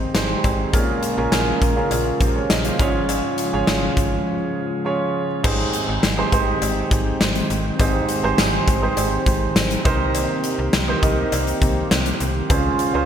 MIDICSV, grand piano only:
0, 0, Header, 1, 2, 480
1, 0, Start_track
1, 0, Key_signature, -4, "major"
1, 0, Tempo, 588235
1, 601, Time_signature, 4, 2, 24, 8
1, 10652, End_track
2, 0, Start_track
2, 0, Title_t, "Grand piano"
2, 0, Program_c, 0, 0
2, 0, Control_c, 0, 64, 127
2, 0, Note_on_c, 0, 44, 66
2, 0, Note_on_c, 0, 63, 78
2, 0, Note_on_c, 0, 67, 73
2, 0, Note_on_c, 0, 68, 74
2, 0, Note_on_c, 0, 72, 96
2, 117, Note_off_c, 0, 63, 0
2, 117, Note_on_c, 0, 63, 78
2, 121, Note_off_c, 0, 67, 0
2, 121, Note_on_c, 0, 67, 72
2, 126, Note_off_c, 0, 68, 0
2, 126, Note_on_c, 0, 68, 70
2, 127, Note_off_c, 0, 72, 0
2, 127, Note_on_c, 0, 72, 84
2, 452, Note_off_c, 0, 63, 0
2, 454, Note_off_c, 0, 67, 0
2, 456, Note_off_c, 0, 68, 0
2, 457, Note_off_c, 0, 72, 0
2, 594, Note_on_c, 0, 61, 78
2, 599, Note_on_c, 0, 65, 74
2, 600, Note_on_c, 0, 46, 68
2, 601, Note_on_c, 0, 68, 73
2, 604, Note_on_c, 0, 70, 84
2, 613, Control_c, 0, 64, 0
2, 618, Note_off_c, 0, 44, 0
2, 774, Control_c, 0, 64, 127
2, 847, Note_off_c, 0, 61, 0
2, 849, Note_off_c, 0, 65, 0
2, 851, Note_off_c, 0, 68, 0
2, 852, Note_off_c, 0, 70, 0
2, 956, Note_on_c, 0, 61, 81
2, 959, Note_on_c, 0, 65, 76
2, 962, Note_on_c, 0, 68, 80
2, 966, Note_on_c, 0, 70, 92
2, 1288, Note_off_c, 0, 46, 0
2, 1291, Note_off_c, 0, 61, 0
2, 1293, Note_off_c, 0, 65, 0
2, 1294, Note_off_c, 0, 68, 0
2, 1296, Note_off_c, 0, 70, 0
2, 1436, Note_on_c, 0, 61, 79
2, 1438, Note_on_c, 0, 65, 75
2, 1442, Note_on_c, 0, 68, 72
2, 1446, Note_on_c, 0, 70, 86
2, 1800, Note_on_c, 0, 72, 57
2, 1802, Note_off_c, 0, 68, 0
2, 1804, Note_off_c, 0, 70, 0
2, 1805, Note_on_c, 0, 67, 51
2, 1915, Note_off_c, 0, 72, 0
2, 1917, Note_off_c, 0, 67, 0
2, 1921, Note_on_c, 0, 73, 68
2, 1925, Note_on_c, 0, 68, 59
2, 2035, Note_off_c, 0, 73, 0
2, 2037, Note_off_c, 0, 68, 0
2, 2042, Note_on_c, 0, 75, 70
2, 2046, Note_on_c, 0, 70, 58
2, 2103, Note_off_c, 0, 61, 0
2, 2105, Note_off_c, 0, 65, 0
2, 2156, Note_off_c, 0, 75, 0
2, 2158, Note_off_c, 0, 70, 0
2, 2163, Note_on_c, 0, 77, 61
2, 2168, Note_on_c, 0, 72, 52
2, 2278, Note_on_c, 0, 61, 93
2, 2281, Note_on_c, 0, 65, 81
2, 2283, Note_on_c, 0, 44, 71
2, 2284, Note_on_c, 0, 68, 83
2, 2288, Note_on_c, 0, 73, 102
2, 2293, Control_c, 0, 64, 0
2, 2390, Note_off_c, 0, 77, 0
2, 2393, Note_off_c, 0, 72, 0
2, 2421, Control_c, 0, 64, 127
2, 2760, Note_off_c, 0, 61, 0
2, 2761, Note_off_c, 0, 65, 0
2, 2763, Note_off_c, 0, 68, 0
2, 2765, Note_off_c, 0, 73, 0
2, 2879, Note_on_c, 0, 61, 83
2, 2882, Note_on_c, 0, 65, 75
2, 2884, Note_on_c, 0, 68, 77
2, 2888, Note_on_c, 0, 73, 100
2, 2970, Note_off_c, 0, 44, 0
2, 3545, Note_off_c, 0, 61, 0
2, 3546, Note_off_c, 0, 65, 0
2, 3548, Note_off_c, 0, 68, 0
2, 3549, Note_off_c, 0, 73, 0
2, 3955, Note_on_c, 0, 61, 78
2, 3958, Note_on_c, 0, 65, 77
2, 3962, Note_on_c, 0, 68, 75
2, 3966, Note_on_c, 0, 73, 89
2, 4291, Note_off_c, 0, 61, 0
2, 4292, Note_off_c, 0, 65, 0
2, 4294, Note_off_c, 0, 68, 0
2, 4296, Note_off_c, 0, 73, 0
2, 4434, Note_on_c, 0, 63, 79
2, 4439, Note_on_c, 0, 67, 71
2, 4440, Note_on_c, 0, 44, 68
2, 4443, Note_on_c, 0, 68, 74
2, 4445, Note_on_c, 0, 72, 84
2, 4451, Control_c, 0, 64, 0
2, 4578, Control_c, 0, 64, 127
2, 4853, Note_off_c, 0, 63, 0
2, 4856, Note_off_c, 0, 67, 0
2, 4858, Note_off_c, 0, 68, 0
2, 4859, Note_off_c, 0, 72, 0
2, 5039, Note_on_c, 0, 63, 77
2, 5041, Note_on_c, 0, 67, 75
2, 5045, Note_on_c, 0, 68, 77
2, 5048, Note_on_c, 0, 72, 91
2, 5123, Note_off_c, 0, 63, 0
2, 5124, Note_off_c, 0, 67, 0
2, 5126, Note_off_c, 0, 68, 0
2, 5128, Note_off_c, 0, 44, 0
2, 5128, Note_off_c, 0, 72, 0
2, 5156, Note_on_c, 0, 63, 85
2, 5161, Note_on_c, 0, 67, 76
2, 5164, Note_on_c, 0, 68, 75
2, 5167, Note_on_c, 0, 72, 92
2, 5824, Note_off_c, 0, 63, 0
2, 5826, Note_off_c, 0, 67, 0
2, 5827, Note_off_c, 0, 68, 0
2, 5829, Note_off_c, 0, 72, 0
2, 6357, Note_on_c, 0, 63, 77
2, 6360, Note_on_c, 0, 67, 71
2, 6361, Note_on_c, 0, 44, 68
2, 6364, Note_on_c, 0, 68, 74
2, 6367, Note_on_c, 0, 72, 87
2, 6609, Note_off_c, 0, 63, 0
2, 6610, Note_off_c, 0, 67, 0
2, 6612, Note_off_c, 0, 68, 0
2, 6614, Note_off_c, 0, 72, 0
2, 6719, Note_on_c, 0, 63, 88
2, 6721, Note_on_c, 0, 67, 77
2, 6724, Note_on_c, 0, 68, 78
2, 6727, Note_on_c, 0, 72, 101
2, 7049, Note_off_c, 0, 44, 0
2, 7052, Note_off_c, 0, 63, 0
2, 7054, Note_off_c, 0, 67, 0
2, 7055, Note_off_c, 0, 68, 0
2, 7056, Note_off_c, 0, 72, 0
2, 7197, Note_on_c, 0, 63, 82
2, 7201, Note_on_c, 0, 67, 74
2, 7204, Note_on_c, 0, 68, 75
2, 7207, Note_on_c, 0, 72, 88
2, 7864, Note_off_c, 0, 63, 0
2, 7866, Note_off_c, 0, 67, 0
2, 7867, Note_off_c, 0, 68, 0
2, 7869, Note_off_c, 0, 72, 0
2, 8035, Note_on_c, 0, 63, 92
2, 8038, Note_on_c, 0, 67, 78
2, 8040, Note_on_c, 0, 48, 74
2, 8041, Note_on_c, 0, 70, 81
2, 8045, Note_on_c, 0, 72, 103
2, 8051, Control_c, 0, 64, 0
2, 8195, Control_c, 0, 64, 127
2, 8710, Note_off_c, 0, 63, 0
2, 8712, Note_off_c, 0, 67, 0
2, 8713, Note_off_c, 0, 70, 0
2, 8715, Note_off_c, 0, 72, 0
2, 8728, Note_off_c, 0, 48, 0
2, 8876, Note_on_c, 0, 63, 79
2, 8880, Note_on_c, 0, 67, 74
2, 8883, Note_on_c, 0, 70, 73
2, 8886, Note_on_c, 0, 72, 91
2, 8962, Note_off_c, 0, 63, 0
2, 8964, Note_off_c, 0, 67, 0
2, 8965, Note_off_c, 0, 70, 0
2, 8967, Note_off_c, 0, 72, 0
2, 8996, Note_on_c, 0, 63, 86
2, 9001, Note_on_c, 0, 67, 77
2, 9004, Note_on_c, 0, 70, 76
2, 9007, Note_on_c, 0, 75, 91
2, 9663, Note_off_c, 0, 63, 0
2, 9666, Note_off_c, 0, 67, 0
2, 9667, Note_off_c, 0, 70, 0
2, 9669, Note_off_c, 0, 75, 0
2, 10194, Note_on_c, 0, 61, 78
2, 10198, Note_on_c, 0, 49, 70
2, 10199, Note_on_c, 0, 65, 77
2, 10203, Note_on_c, 0, 68, 73
2, 10204, Note_on_c, 0, 72, 83
2, 10211, Control_c, 0, 64, 0
2, 10338, Control_c, 0, 64, 127
2, 10447, Note_off_c, 0, 61, 0
2, 10449, Note_off_c, 0, 65, 0
2, 10451, Note_off_c, 0, 68, 0
2, 10452, Note_off_c, 0, 72, 0
2, 10556, Note_on_c, 0, 61, 84
2, 10560, Note_on_c, 0, 65, 78
2, 10563, Note_on_c, 0, 68, 80
2, 10567, Note_on_c, 0, 72, 93
2, 10652, Note_off_c, 0, 49, 0
2, 10652, Note_off_c, 0, 61, 0
2, 10652, Note_off_c, 0, 65, 0
2, 10652, Note_off_c, 0, 68, 0
2, 10652, Note_off_c, 0, 72, 0
2, 10652, End_track
0, 0, End_of_file